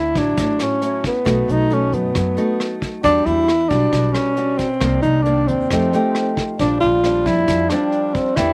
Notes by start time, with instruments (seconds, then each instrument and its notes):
Already playing: upright bass D2, nylon-string guitar D3, tenor saxophone E4
0.15 upright bass A1, nylon-string guitar F#3 E4, tenor saxophone D4, kick, closed hi-hat
0.37 upright bass A1, nylon-string guitar A2, kick, closed hi-hat
0.59 tenor saxophone C#4, cross-stick, closed hi-hat
0.82 nylon-string guitar F#3 C#4 E4, closed hi-hat
1.04 tenor saxophone B3, kick, closed hi-hat
1.24 upright bass B1, nylon-string guitar B2 A3 D#4 F#4, kick, cross-stick, closed hi-hat
1.48 upright bass B1, tenor saxophone D#4, closed hi-hat
1.70 nylon-string guitar A3 D#4 F#4, tenor saxophone C#4, closed hi-hat
1.92 upright bass F#2, tenor saxophone B3, closed hi-hat
2.15 upright bass F#2, nylon-string guitar F#3, kick, cross-stick, closed hi-hat
2.37 nylon-string guitar A3 D#4 F#4, closed hi-hat
2.60 cross-stick, closed hi-hat
2.82 kick, closed hi-hat
3.04 upright bass E2, nylon-string guitar E3 G3 D4 F#4, tenor saxophone D4, kick, closed hi-hat
3.26 upright bass E2, tenor saxophone E4, closed hi-hat
3.48 cross-stick, closed hi-hat
3.69 upright bass B1, nylon-string guitar G3 D4 F#4, tenor saxophone D4, kick, closed hi-hat
3.91 upright bass B1, nylon-string guitar B2, kick, closed hi-hat
4.12 tenor saxophone C#4, cross-stick, closed hi-hat
4.37 nylon-string guitar G3 D4 F#4, closed hi-hat
4.58 tenor saxophone C4, kick, closed hi-hat
4.81 upright bass C2, nylon-string guitar C3 D#3 A#3 D4, kick, cross-stick, closed hi-hat
5.02 upright bass C2, tenor saxophone D#4, closed hi-hat
5.22 nylon-string guitar D#3 D4, tenor saxophone D4, closed hi-hat
5.26 nylon-string guitar A#3
5.48 upright bass D#2, tenor saxophone C4, closed hi-hat
5.70 upright bass F2, nylon-string guitar F3 A3 D#4 G4, kick, cross-stick, closed hi-hat
5.93 nylon-string guitar A3 D#4 G4, closed hi-hat
6.15 cross-stick, closed hi-hat
6.37 kick, closed hi-hat
6.59 upright bass A#1, nylon-string guitar A#2 G3 C4 D4, tenor saxophone D4, kick, closed hi-hat
6.80 upright bass A#1, tenor saxophone F4, closed hi-hat
7.04 nylon-string guitar G3 C4 D4, cross-stick, closed hi-hat
7.25 upright bass F2, tenor saxophone E4, kick, closed hi-hat
7.48 upright bass F2, nylon-string guitar F3, kick, closed hi-hat
7.69 nylon-string guitar G3 C4 D4, tenor saxophone D4, cross-stick, closed hi-hat
7.92 closed hi-hat
8.14 tenor saxophone C4, kick, closed hi-hat
8.36 upright bass E2, nylon-string guitar E3 B3 D4 G4, tenor saxophone E4, kick, cross-stick, closed hi-hat